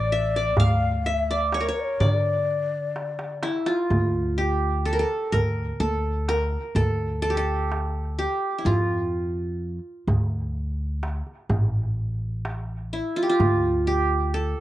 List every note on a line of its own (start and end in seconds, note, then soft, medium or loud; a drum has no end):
0.00 0.58 A1 medium
0.00 0.36 D5 medium
0.00 0.59 D5 medium
0.11 0.66 E5 medium
0.11 darbuka ka soft
0.36 1.30 D5 medium
0.57 1.70 D2 medium
0.57 1.06 F5 medium
0.57 1.12 F5 medium
0.57 darbuka dum loud
1.05 1.39 E5 medium
1.05 1.98 E5 medium
1.31 1.60 D5 medium
1.52 1.68 C#5 medium
1.52 darbuka tek medium
1.60 2.74 A#4 medium
1.67 1.75 C#5 medium
1.67 2.06 C#5 medium
1.74 1.82 A#4 medium
1.74 darbuka ka soft
1.80 1.85 D5 medium
1.84 2.02 C#5 medium
2.00 3.50 D3 medium
2.00 3.39 D5 medium
2.00 3.43 D5 medium
2.00 darbuka dum medium
2.96 darbuka tek medium
3.19 darbuka ka medium
3.43 3.72 E4 medium
3.43 darbuka tek medium
3.66 5.01 F4 medium
3.66 darbuka ka medium
3.90 5.03 D2 medium
3.90 darbuka dum medium
4.38 5.63 G4 medium
4.85 4.99 A4 medium
4.93 5.05 A#4 medium
4.99 5.38 A4 medium
5.32 5.70 D2 medium
5.32 5.86 A#4 medium
5.32 darbuka dum medium
5.80 6.55 D2 medium
5.80 6.35 A4 medium
6.28 6.82 A#4 medium
6.28 darbuka tek medium
6.52 darbuka ka soft
6.75 8.25 D2 medium
6.75 7.22 A4 medium
6.75 darbuka dum medium
7.22 7.37 A4 medium
7.30 8.18 G4 medium
7.37 8.54 A4 medium
7.72 darbuka tek medium
8.19 9.44 G4 medium
8.58 8.72 E4 medium
8.65 9.78 F2 medium
8.65 12.42 F4 medium
8.65 darbuka dum medium
10.07 11.20 D2 medium
10.07 darbuka dum medium
11.03 darbuka tek medium
11.27 darbuka ka soft
11.49 13.00 A1 medium
11.49 darbuka dum medium
12.45 darbuka tek medium
12.93 13.22 E4 medium
13.16 13.29 F4 medium
13.23 13.87 G4 medium
13.29 14.60 F4 medium
13.40 14.52 D2 medium
13.40 darbuka dum medium
13.87 14.60 G4 medium
14.34 14.60 A4 medium